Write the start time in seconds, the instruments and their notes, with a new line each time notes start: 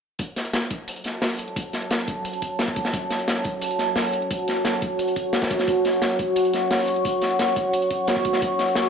0.19 analog synth pad F#4 C#5 F#5 A5, kick, closed hi-hat
0.36 snare, closed hi-hat
0.45 closed hi-hat
0.53 snare, closed hi-hat
0.70 kick, closed hi-hat
0.88 closed hi-hat
0.96 closed hi-hat
1.04 snare, closed hi-hat
1.22 snare, closed hi-hat, open hi-hat
1.39 closed hi-hat
1.48 closed hi-hat
1.56 kick, closed hi-hat
1.73 snare, closed hi-hat
1.82 closed hi-hat
1.91 snare, closed hi-hat
2.08 kick, closed hi-hat
2.25 closed hi-hat
2.33 closed hi-hat
2.42 kick, closed hi-hat
2.59 snare, closed hi-hat
2.68 kick
2.76 kick, closed hi-hat
2.85 snare, closed hi-hat
2.93 kick, closed hi-hat
3.10 snare, closed hi-hat
3.19 closed hi-hat
3.28 snare, closed hi-hat
3.44 kick, closed hi-hat
3.61 closed hi-hat
3.71 closed hi-hat
3.79 snare, closed hi-hat
3.95 snare, closed hi-hat, open hi-hat
4.13 closed hi-hat
4.22 closed hi-hat
4.31 kick, closed hi-hat
4.48 snare, closed hi-hat
4.56 closed hi-hat
4.65 snare, closed hi-hat
4.82 kick, closed hi-hat
4.99 closed hi-hat
5.08 closed hi-hat
5.16 kick, closed hi-hat
5.33 snare, closed hi-hat
5.42 kick, snare, closed hi-hat
5.51 kick, closed hi-hat
5.59 snare, closed hi-hat
5.68 analog synth pad C#6, kick, closed hi-hat
5.85 snare, closed hi-hat
5.94 closed hi-hat
6.02 snare, closed hi-hat
6.19 kick, closed hi-hat
6.36 closed hi-hat
6.45 closed hi-hat
6.54 snare, closed hi-hat
6.71 snare, closed hi-hat, open hi-hat
6.88 closed hi-hat
6.96 closed hi-hat
7.05 kick, closed hi-hat
7.21 snare, closed hi-hat
7.31 closed hi-hat
7.39 snare, closed hi-hat
7.56 kick, closed hi-hat
7.73 closed hi-hat
7.82 closed hi-hat
7.91 kick, closed hi-hat
8.07 snare, closed hi-hat
8.16 kick
8.25 kick, closed hi-hat
8.33 snare, closed hi-hat
8.42 kick, closed hi-hat
8.59 snare, closed hi-hat
8.68 closed hi-hat
8.75 snare, closed hi-hat